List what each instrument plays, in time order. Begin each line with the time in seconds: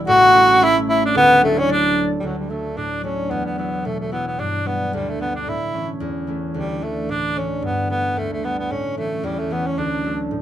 Already playing: harp E1 E2 G3 A3 B3 D4 E4
0.07 harp A1 A2, tenor saxophone F#4, flute F#5
0.34 harp A3 C#4 E4
0.61 harp A3 C#4 E4, tenor saxophone E4, flute E5
0.88 tenor saxophone E4, flute E5
1.05 tenor saxophone D4
1.15 harp D1 D2, tenor saxophone B3, flute B4
1.41 harp F#3 A3 D4, tenor saxophone A3, flute A4
1.57 tenor saxophone C#4, flute C#5
1.68 harp F#3 A3 D4, tenor saxophone D4, flute D5
2.20 harp D2, tenor saxophone F#3 G3
2.38 tenor saxophone G3
2.50 harp F#3 A3 D4, tenor saxophone A3
2.77 harp A2, tenor saxophone D4
3.03 harp F#3 A3 D4, tenor saxophone C#4
3.30 harp E2, tenor saxophone B3
3.46 tenor saxophone B3
3.58 harp F#3 B3 E4, tenor saxophone B3
3.85 harp B2, tenor saxophone A3
4.00 tenor saxophone A3
4.11 harp F#3 B3 E4, tenor saxophone B3
4.27 tenor saxophone B3
4.39 harp G2, tenor saxophone D4
4.65 harp G3 B3 D4, tenor saxophone B3
4.93 harp D2, tenor saxophone G3
5.10 tenor saxophone A3
5.20 harp G3 B3 D4, tenor saxophone B3
5.35 tenor saxophone D4
5.47 harp A2, tenor saxophone E4
5.73 harp E3 A3 C#4
6.00 harp E2
6.27 harp E3 A3 C#4
6.54 harp D2, tenor saxophone G3
6.81 harp E3 A3 D4, tenor saxophone A3
7.09 harp A2, tenor saxophone D4
7.35 harp E3 A3 D4, tenor saxophone C#4
7.62 harp G2, tenor saxophone B3
7.89 harp G3 A3 B3, tenor saxophone B3
8.17 harp D2, tenor saxophone A3
8.33 tenor saxophone A3
8.44 harp G3 A3 B3, tenor saxophone B3
8.59 tenor saxophone B3
8.71 harp A2, tenor saxophone C#4
8.97 harp E3 A3 C#4, tenor saxophone A3
9.23 harp E2, tenor saxophone G3
9.39 tenor saxophone A3
9.50 harp E3 A3 C#4, tenor saxophone B3
9.66 tenor saxophone C#4
9.78 harp D2, tenor saxophone D4
10.04 harp F#3 A3 D4
10.31 harp A2